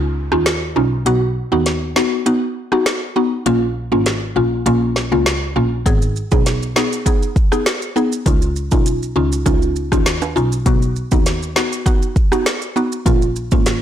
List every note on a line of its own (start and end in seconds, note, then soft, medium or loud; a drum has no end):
0.00 0.28 C#2 loud
0.00 0.28 C#4 medium
0.00 0.28 D#4 medium
0.00 0.28 F4 loud
0.00 downlifter medium
0.32 0.72 D#2 medium
0.32 0.46 C#4 medium
0.32 0.46 D#4 medium
0.32 0.46 F4 medium
0.32 cross-stick medium
0.46 snare loud
0.46 closed hi-hat medium
0.76 1.03 B1 medium
0.76 0.92 C#4 medium
0.76 0.92 D#4 medium
0.76 0.92 F4 medium
1.06 1.33 B1 loud
1.06 1.22 B3 loud
1.06 1.22 D#4 medium
1.06 1.22 F#4 loud
1.06 closed hi-hat medium
1.52 1.92 D#2 medium
1.52 1.93 B3 medium
1.52 1.93 D#4 medium
1.52 1.93 F#4 medium
1.66 snare medium
1.66 closed hi-hat medium
1.96 2.24 B3 medium
1.96 2.24 D#4 medium
1.96 2.24 F#4 medium
1.96 snare loud
2.26 2.42 B3 medium
2.26 2.42 D#4 medium
2.26 2.42 F#4 loud
2.26 closed hi-hat medium
2.72 2.86 B3 medium
2.72 2.86 D#4 medium
2.72 2.86 F#4 medium
2.72 cross-stick medium
2.86 snare loud
2.86 closed hi-hat medium
3.16 3.32 B3 medium
3.16 3.32 D#4 medium
3.16 3.32 F#4 medium
3.46 3.88 A#1 loud
3.46 3.62 A#3 medium
3.46 3.62 C#4 medium
3.46 3.62 F4 loud
3.46 closed hi-hat medium
3.92 4.32 G#1 medium
3.92 4.33 A#3 medium
3.92 4.33 C#4 medium
3.92 4.33 F4 medium
4.06 snare medium
4.06 closed hi-hat medium
4.36 4.63 A#1 medium
4.36 4.64 A#3 medium
4.36 4.64 C#4 medium
4.36 4.64 F4 medium
4.66 5.08 A#1 loud
4.66 5.08 A#3 medium
4.66 5.08 C#4 medium
4.66 5.08 F4 loud
4.66 closed hi-hat medium
4.96 snare medium
5.12 5.52 C#2 medium
5.12 5.26 A#3 medium
5.12 5.26 C#4 medium
5.12 5.26 F4 medium
5.26 snare loud
5.26 closed hi-hat medium
5.56 5.83 A#1 medium
5.56 5.72 A#3 medium
5.56 5.72 C#4 medium
5.56 5.72 F4 medium
5.86 6.13 G#1 loud
5.86 6.02 B3 medium
5.86 6.02 D#4 medium
5.86 6.02 G#4 loud
5.86 kick loud
5.86 closed hi-hat medium
5.86 maracas medium
6.02 maracas soft
6.16 maracas soft
6.32 6.72 B1 medium
6.32 6.73 B3 medium
6.32 6.73 D#4 medium
6.32 6.73 G#4 medium
6.32 kick medium
6.32 maracas medium
6.46 snare medium
6.46 closed hi-hat medium
6.46 maracas medium
6.63 maracas soft
6.76 7.04 B3 medium
6.76 7.04 D#4 medium
6.76 7.04 G#4 medium
6.76 snare loud
6.92 maracas medium
7.06 7.22 B3 medium
7.06 7.22 D#4 medium
7.06 7.22 G#4 loud
7.06 kick medium
7.06 closed hi-hat medium
7.06 maracas medium
7.22 maracas soft
7.36 kick loud
7.36 maracas soft
7.52 7.66 B3 medium
7.52 7.66 D#4 medium
7.52 7.66 G#4 medium
7.52 cross-stick medium
7.52 maracas medium
7.66 snare loud
7.66 closed hi-hat medium
7.66 maracas medium
7.82 maracas soft
7.96 8.12 B3 medium
7.96 8.12 D#4 medium
7.96 8.12 G#4 medium
7.96 maracas medium
8.12 maracas medium
8.26 8.68 C#2 loud
8.26 8.42 C#4 loud
8.26 8.42 D#4 medium
8.26 8.42 F4 loud
8.26 kick loud
8.26 closed hi-hat medium
8.26 maracas medium
8.42 maracas soft
8.56 maracas soft
8.72 9.12 B1 medium
8.72 9.13 C#4 medium
8.72 9.13 D#4 medium
8.72 9.13 F4 medium
8.72 kick medium
8.72 maracas medium
8.86 closed hi-hat medium
8.86 maracas medium
9.02 maracas soft
9.16 9.43 C#2 medium
9.16 9.44 C#4 medium
9.16 9.44 D#4 medium
9.16 9.44 F4 medium
9.32 maracas medium
9.46 9.88 C#2 loud
9.46 9.88 C#4 loud
9.46 9.88 D#4 medium
9.46 9.88 F4 loud
9.46 kick medium
9.46 closed hi-hat medium
9.46 maracas medium
9.62 maracas soft
9.76 maracas soft
9.92 10.32 D#2 medium
9.92 10.06 C#4 medium
9.92 10.06 D#4 medium
9.92 10.06 F4 medium
9.92 kick medium
9.92 cross-stick medium
9.92 maracas medium
10.06 snare loud
10.06 closed hi-hat medium
10.06 maracas medium
10.22 high timbale medium
10.22 maracas soft
10.36 10.63 B1 medium
10.36 10.52 C#4 medium
10.36 10.52 D#4 medium
10.36 10.52 F4 medium
10.36 maracas medium
10.52 maracas medium
10.66 10.93 B1 loud
10.66 10.82 B3 medium
10.66 10.82 D#4 medium
10.66 10.82 F#4 loud
10.66 kick loud
10.66 closed hi-hat medium
10.66 maracas medium
10.82 maracas soft
10.96 maracas soft
11.11 11.52 D#2 medium
11.11 11.53 B3 medium
11.11 11.53 D#4 medium
11.11 11.53 F#4 medium
11.11 kick loud
11.11 maracas medium
11.26 snare medium
11.26 closed hi-hat medium
11.26 maracas medium
11.42 maracas soft
11.56 11.84 B3 medium
11.56 11.84 D#4 medium
11.56 11.84 F#4 medium
11.56 snare loud
11.72 maracas medium
11.86 12.02 B3 medium
11.86 12.02 D#4 medium
11.86 12.02 F#4 loud
11.86 kick medium
11.86 closed hi-hat medium
11.86 maracas medium
12.02 maracas soft
12.16 kick loud
12.16 maracas soft
12.32 12.46 B3 medium
12.32 12.46 D#4 medium
12.32 12.46 F#4 medium
12.32 cross-stick medium
12.32 maracas medium
12.46 snare loud
12.46 closed hi-hat medium
12.46 maracas medium
12.62 maracas soft
12.76 12.92 B3 medium
12.76 12.92 D#4 medium
12.76 12.92 F#4 medium
12.76 maracas soft
12.92 maracas medium
13.06 13.48 A#1 loud
13.06 13.22 A#3 loud
13.06 13.22 C#4 medium
13.06 13.22 F4 loud
13.06 kick loud
13.06 closed hi-hat medium
13.06 maracas medium
13.22 maracas soft
13.36 maracas soft
13.51 13.82 G#1 medium
13.51 13.82 A#3 medium
13.51 13.82 C#4 medium
13.51 13.82 F4 medium
13.51 kick medium
13.51 maracas medium
13.66 snare medium
13.66 closed hi-hat medium
13.66 maracas medium